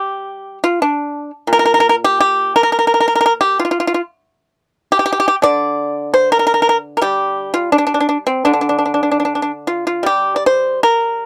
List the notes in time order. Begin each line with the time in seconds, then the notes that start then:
Already playing: G3 G4
0.64 F4
0.82 D4
1.47 A#2
1.53 A#4
1.59 A#4
1.65 A#4
1.74 A#4
1.80 A#4
1.89 A#4
2.04 G4
2.20 G4
2.56 A#4
2.63 A#4
2.72 A#4
2.79 A#4
2.87 A#4
2.94 A#4
3.00 A#4
3.08 A#4
3.15 A#4
3.21 A#4
3.26 A#4
3.41 G4
3.59 F4
3.65 F4
3.71 F4
3.80 F4
3.87 F4
3.94 F4
4.92 G4
4.99 G4
5.06 G4
5.13 G4
5.20 G4
5.28 G4
5.42 D3 D5
6.14 C5
6.32 A#4
6.39 A#4
6.47 A#4
6.54 A#4
6.62 A#4
6.69 A#4
6.97 A#4
7.01 G3 G4
7.54 F4
7.72 D4
7.78 D4
7.87 D4
7.94 D4
8.00 D4
8.09 D4
8.27 C4
8.45 D3 D4
8.53 D4
8.61 D4
8.69 D4
8.79 D4
8.85 D4
8.94 D4
9.03 D4
9.11 D4
9.20 D4
9.25 D4
9.35 D4
9.42 D4
9.67 F4
9.87 F4
10.03 G3 G4
10.36 D5
10.46 C5
10.83 A#4